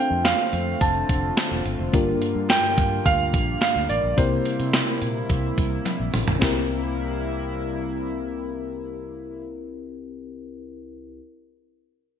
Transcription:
Already playing: D3 A3 C4 D4 F4 A4 C5 G5
0.11 F2
0.25 F5, snare, clap, closed hi-hat, tambourine
0.53 F2, closed hi-hat
0.81 F1 A5, kick, closed hi-hat
1.09 F1, kick, closed hi-hat
1.37 snare, clap, closed hi-hat, tambourine
1.51 E1
1.65 G1, closed hi-hat
1.79 F1
1.92 G1 G2 G3 A#3 D4 F4 G4 A#4, kick, closed hi-hat
2.22 closed hi-hat
2.35 G2
2.50 G5, snare, clap, closed hi-hat, tambourine
2.78 G2, kick, clap, closed hi-hat
3.06 D2 F5, kick, closed hi-hat
3.34 A#1, kick, closed hi-hat
3.62 F5, snare, clap, closed hi-hat, tambourine
3.76 D2
3.89 A1 D5, closed hi-hat
4.04 A#1
4.17 C2 C3 A#3 C4 E4 G4 A#4 C5, kick, closed hi-hat
4.45 closed hi-hat
4.60 C3, closed hi-hat
4.73 snare, clap, closed hi-hat, tambourine
5.02 A#2, closed hi-hat
5.30 C2, kick, closed hi-hat
5.58 C2, kick, closed hi-hat
5.86 clap, closed hi-hat, high tom
6.00 A#1
6.14 A1, mid tom, open hi-hat
6.27 A#1, closed hi-hat, floor tom
6.39 C2 C3 G3 A#3 C4 E4 G4, kick, snare, clap, open hi-hat
6.44 A#4

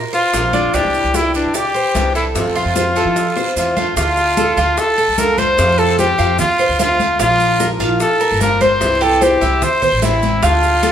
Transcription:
Already playing: A#4
0.13 F4 C5, high bongo, high conga, maracas
0.33 A#1 F3 A#3 C4 F4, high bongo, low bongo, high conga, short guiro, maracas
0.53 A#3 C4 D4 F4, high bongo, high conga, short guiro, maracas
0.73 C2 C3 E3 G3 D4 E4 G4, high bongo, high conga, long guiro, maracas
0.84 C2
0.94 high conga, maracas
1.04 C2
1.14 E4 G4, high bongo, high conga, short guiro, maracas
1.34 E3 G3 D4 E4, high conga, short guiro, maracas
1.45 C3
1.54 G4 D5, muted steel-string acoustic guitar stroke, high bongo, high conga, long guiro, maracas
1.74 C5, high conga, maracas
1.94 C2 C3 E3 G3 D4 E4, high bongo, low bongo, high conga, short guiro, maracas
2.15 G3 D4 E4 A4, short guiro, maracas
2.35 F2 C3 A3 C4 F4, high bongo, high conga, long guiro, maracas
2.45 F2
2.55 F4, high conga, maracas
2.65 F2
2.75 C5, high bongo, high conga, short guiro, maracas
2.95 E3 A3 C4 F4 A4, high bongo, high conga, short guiro, maracas
3.05 F3
3.16 muted steel-string acoustic guitar stroke, high bongo, high conga, long guiro, maracas
3.36 C5, high bongo, high conga, maracas
3.56 E2 C3 E3 A3 C4 F4, high conga, short guiro, maracas
3.76 A3 C4 F4, low bongo, high conga, short guiro, maracas
3.96 D2 D3 A3 D4 F4, high bongo, high conga, long guiro, maracas
4.17 high bongo, high conga, maracas
4.37 A4, high bongo, high conga, short guiro, maracas
4.57 D2 A3 D4 F4, high bongo, high conga, short guiro, maracas
4.77 A4, muted steel-string acoustic guitar stroke, high bongo, high conga, long guiro, maracas
4.98 A4, high bongo, high conga, maracas
5.08 C2
5.17 D3 A3 D4 F4 A#4, high bongo, low bongo, high conga, short guiro, maracas
5.37 A3 D4 F4 C5, high conga, short guiro, maracas
5.57 F2 C3 F3 A3 C4 F4, high bongo, high conga, long guiro, maracas
5.78 A4, high bongo, high conga, maracas
5.99 G4 C5, high bongo, high conga, short guiro, maracas
6.18 F2 F3 A3 C4 F4 F5, high bongo, high conga, short guiro, maracas
6.38 F4, muted steel-string acoustic guitar stroke, high bongo, high conga, low conga, long guiro, maracas
6.59 C5, high bongo, high conga, maracas
6.69 D2
6.79 C3 F3 A3 C4 F4 F5, high bongo, low bongo, high conga, short guiro, maracas
6.99 A3 C4, high conga, short guiro, maracas
7.19 A#1 F3 A#3 D4 F4, high bongo, high conga, long guiro, maracas
7.40 high bongo, high conga, maracas
7.60 A#4, high bongo, high conga, short guiro, maracas
7.80 A#1 A#3 D4 F4, high bongo, high conga, short guiro, maracas
8.00 A4, muted steel-string acoustic guitar stroke, high bongo, high conga, long guiro, maracas
8.20 A#4, high bongo, high conga, maracas
8.31 G1
8.40 F3 A#3 D4 F4 A#4, high bongo, low bongo, high conga, short guiro, maracas
8.60 A#3 D4 F4 C5, high conga, short guiro, maracas
8.81 C2 C3 E3 G3 C4 E4, high bongo, high conga, long guiro, maracas
9.01 G4 A4, high bongo, high conga, maracas
9.21 G4 C5, high bongo, high conga, short guiro, maracas
9.41 C2 E3 G3 C4 E4 E5, high bongo, high conga, short guiro, maracas
9.62 C5, muted steel-string acoustic guitar stroke, high bongo, high conga, low conga, long guiro, maracas
9.82 C5, high bongo, high conga, low conga, maracas
9.92 A1
10.02 C3 E3 G3 C4 E4 E5, high bongo, low bongo, high conga, short guiro, maracas
10.22 G3 C4 E4, high conga, short guiro, maracas
10.43 D2 D3 A3 D4 F4, high bongo, high conga, long guiro, maracas
10.63 high bongo, high conga, maracas
10.83 A4, high bongo, high conga, short guiro, maracas

